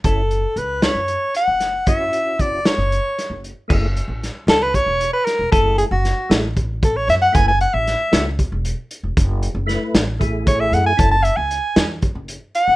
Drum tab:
CC |-------|-------|x------|-------|
HH |xxxxxxx|xxxxxxx|-xxxxxx|xxxxxxx|
SD |---o--o|---o-o-|--oo--o|--oo--o|
BD |o------|o-o----|o---o--|o---oo-|

CC |-------|-------|-------|
HH |xxxxxxx|xxxxxxx|xxxxxxx|
SD |--oo---|--oo---|---o---|
BD |o---o--|o---oo-|o---o--|